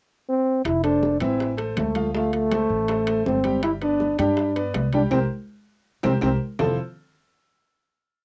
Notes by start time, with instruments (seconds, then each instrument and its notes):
0.29 trombone C4
0.65 upright bass F1, trombone E4, high bongo, high conga, high timbale, claves
0.83 grand piano A3 A4 C5, trombone D4, high bongo, high conga, high timbale
1.03 high bongo, high conga
1.20 upright bass A1, grand piano E3 E4 E5, trombone C4, high conga, high timbale, claves
1.40 high bongo, high conga
1.57 grand piano A3 A4 C5, high bongo, high conga, high timbale
1.76 upright bass D2, trombone A3, high bongo, low bongo, high conga, high timbale, claves
1.95 grand piano F3 F4 F5, high bongo, high conga, high timbale
2.14 grand piano F3 F4 F5, trombone A3, high bongo, high conga
2.33 trombone A3, high bongo, high conga, high timbale
2.51 grand piano A3 A4 C5, high bongo, high conga, high timbale, claves
2.69 upright bass A1, high conga
2.88 grand piano A3 A4 C5, high bongo, high conga, high timbale
3.07 grand piano A3 A4 C5, high bongo, high conga, high timbale, claves
3.26 upright bass G1, trombone C4, high bongo, low bongo, high conga
3.44 grand piano G3 G4 G5, high bongo, high conga, high timbale
3.63 trombone E4, high bongo, high conga, high timbale, claves
3.81 grand piano B3 B4 D5, trombone D4, high bongo, high conga, high timbale
4.00 high bongo, high conga
4.18 upright bass G2, grand piano G3 G4 G5, trombone D4, high conga, high timbale, claves
4.37 high bongo, high conga
4.56 grand piano B3 B4 D5, high bongo, high conga, high timbale
4.74 upright bass C2, high bongo, low bongo, high conga, high timbale, low timbale, claves
4.93 grand piano G3 G4 G5, trombone D4, high bongo, high conga, high timbale
5.11 upright bass C2, trombone C4, grand piano G4 A#4 C5, low bongo, high conga, high timbale, claves
6.03 upright bass C2, trombone C4, grand piano G4 A#4 C5, low bongo, high conga, high timbale, claves
6.21 upright bass C2, trombone C4, grand piano G4 A#4 C5, low bongo, high conga, high timbale, claves
6.59 upright bass F1, grand piano F3 C4 E4 F4 A4 C5, trombone A4, low bongo, low conga, low timbale, claves